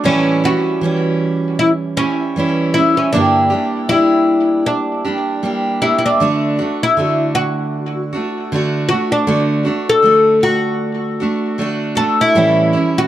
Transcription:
0.04 steel-string acoustic guitar A2 E3 G3 C#4 E4, oud C#4
0.44 steel-string acoustic guitar G3 C#4 E4, oud F#4
0.81 steel-string acoustic guitar E3 G3 C#4 E4
1.59 oud E4
1.97 steel-string acoustic guitar G3 C#4 E4, oud C#4
2.36 steel-string acoustic guitar E3 G3 C#4 E4
2.74 steel-string acoustic guitar C#4 E4, oud E4
2.78 steel-string acoustic guitar G3
2.97 oud C#4
3.13 steel-string acoustic guitar G2 D3 G3 A#3 D4 G4, oud D4
3.50 steel-string acoustic guitar G3 A#3 D4 G4
3.89 steel-string acoustic guitar G3 A#3 D4 G4, oud E4
4.66 oud D4
5.05 steel-string acoustic guitar G3 A#3 D4 G4
5.43 steel-string acoustic guitar G3 A#3 D4 G4
5.82 steel-string acoustic guitar G3 A#3 D4 G4, oud E4
5.98 oud E4
6.06 oud D4
6.20 steel-string acoustic guitar D3 A3 D4 F#4
6.59 steel-string acoustic guitar A3 D4 F#4
6.83 oud E4
6.97 steel-string acoustic guitar D3 A3 D4 F#4
7.35 oud F#4
8.13 steel-string acoustic guitar A3 D4 F#4
8.52 steel-string acoustic guitar D3 A3 D4 F#4
8.89 steel-string acoustic guitar A3 D4 F#4, oud F#4
9.12 oud D4
9.27 steel-string acoustic guitar D3 A3 D4 F#4
9.65 steel-string acoustic guitar A3 D4 F#4
9.89 oud A4
10.02 steel-string acoustic guitar D3 A3 D4 F#4
10.43 oud F#4
11.20 steel-string acoustic guitar A3 D4 F#4
11.58 steel-string acoustic guitar D3 A3 D4 F#4
11.95 steel-string acoustic guitar A3 D4 F#4, oud A4
12.21 oud E4
12.35 steel-string acoustic guitar A2 E3 G3 C#4 E4
12.73 steel-string acoustic guitar G3 C#4 E4
12.98 oud F#4

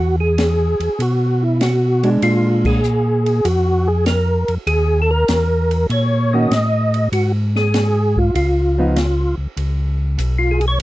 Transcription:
Already playing: tonewheel organ E2 F#4
0.20 tonewheel organ G#4
0.38 snare, hi-hat pedal, ride
0.80 tonewheel organ E2, ride
0.99 tonewheel organ B2 F#4, ride
1.42 tonewheel organ E4
1.61 tonewheel organ F#4, snare, hi-hat pedal, ride
2.03 hollow-body jazz guitar G#3 D4, ride
2.22 tonewheel organ A#2 F4, ride
2.65 tonewheel organ G#4, kick, crash
2.84 hi-hat pedal
3.26 ride
3.45 tonewheel organ F2 F#4, ride
3.88 tonewheel organ G#4
4.06 tonewheel organ A#4, snare, hi-hat pedal, ride
4.48 tonewheel organ F2, ride
4.67 tonewheel organ D#2 G#4, ride
5.02 tonewheel organ A4
5.11 tonewheel organ A#4
5.28 tonewheel organ E2, snare, hi-hat pedal, ride
5.71 ride
5.90 tonewheel organ A#2 C#5, ride
6.33 hollow-body jazz guitar D#3 A#3 C#4 F#4, tonewheel organ D#5
6.51 tonewheel organ A2, snare, hi-hat pedal, ride
6.94 ride
7.12 tonewheel organ G#2 F#4, ride
7.56 tonewheel organ G#4, snare
7.74 snare, hi-hat pedal, ride
8.17 tonewheel organ F4, kick
8.35 tonewheel organ C#2 F4, ride
8.78 hollow-body jazz guitar F3 B3 D#4
8.96 snare, hi-hat pedal, ride
9.38 tonewheel organ C#2
9.57 tonewheel organ C#2, ride
10.18 tonewheel organ B1, hi-hat pedal, ride
10.39 tonewheel organ F4
10.51 tonewheel organ G#4
10.61 ride
10.68 tonewheel organ C#5

